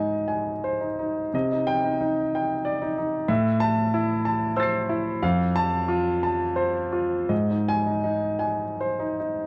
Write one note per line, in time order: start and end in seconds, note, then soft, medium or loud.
0.00 1.29 G#2 medium
0.00 0.81 D#4 medium
0.00 1.35 D#5 medium
0.00 0.13 G#5 medium
0.28 0.85 G#5 medium
0.64 1.20 C5 medium
0.81 0.98 D#4 soft
0.99 1.33 D#4 soft
1.34 3.25 C3 medium
1.34 1.88 D#5 medium
1.52 1.78 D#4 soft
1.67 2.20 G5 medium
1.84 1.99 D#4 medium
2.01 2.53 D#4 medium
2.35 2.86 G5 medium
2.65 3.16 D5 medium
2.82 2.96 D#4 medium
2.98 3.29 D#4 medium
3.28 5.18 A2 medium
3.28 3.80 E5 medium
3.60 4.12 A5 medium
3.94 4.45 E4 medium
4.25 4.77 A5 medium
4.56 5.09 C5 medium
4.56 5.18 E6 medium
4.56 5.20 A6 medium
4.63 5.21 C7 medium
4.89 5.22 E4 medium
5.23 7.27 F2 medium
5.23 5.75 F5 medium
5.56 6.09 A5 medium
5.88 6.43 F4 medium
6.23 6.79 A5 medium
6.56 7.15 C5 medium
6.92 7.30 F4 medium
7.29 9.47 G#2 medium
7.29 7.89 D#5 medium
7.50 7.80 D#4 medium
7.68 8.27 G#5 medium
7.87 8.02 D#4 soft
8.04 8.64 D#4 medium
8.39 9.01 G#5 medium
8.81 9.40 C5 medium
9.00 9.18 D#4 medium
9.20 9.47 D#4 soft